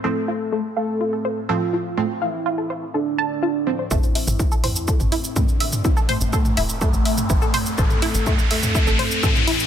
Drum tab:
HH |----------------|----------------|--o---o---o---o-|--o---o---o---o-|
SH |----------------|----------------|xx-xxx-xxx-xxx-x|xx-xxx-xxx-xxx-x|
T2 |----------------|----------------|o--o--o--o--o--o|--o--o--o--o--o-|
BD |----------------|----------------|o---o---o---o---|o---o---o---o---|

HH |--o---o---o---o-|
SH |xx-xxx-xxx-xxx-x|
T2 |-o--o--o--o--o--|
BD |o---o---o---o---|